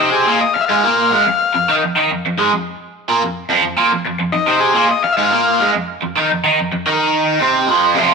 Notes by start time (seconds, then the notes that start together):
Already playing: D#4
0.00 C3 C4
0.12 G#4
0.27 A#2 A#3
0.41 D#5, muted overdriven electric guitar stroke
0.53 F5, muted overdriven electric guitar stroke
0.61 E5
0.66 G#2 G#3 F5
0.83 A#2 A#3
1.10 G#2 G#3
1.26 F2
1.54 F2
1.69 D#3 D#4
1.82 F2
1.95 D#3 D#4
2.11 F2
2.26 F2
2.38 G#2 G#3
2.53 F2
3.09 A#2 A#3
3.22 F2
3.49 F2 F3
3.63 F2
3.77 A#2 A#3
3.91 F2
4.05 F2
4.19 F2
4.32 F2 D#4
4.46 C3 C4
4.60 G#4
4.74 A#2 A#3
4.89 D#5, muted overdriven electric guitar stroke
5.03 F5, muted overdriven electric guitar stroke
5.13 E5
5.17 G#2 G#3 F5
5.31 A#2 A#3
5.59 G#2 G#3
5.74 F2
6.02 F2
6.16 D#3 D#4
6.31 F2
6.44 D#3 D#4
6.58 F2
6.72 F2
6.86 D#3 D#4
7.41 C3 C4
7.68 F2 F3
7.95 F2 C3 F3 A3
7.99 C4 F4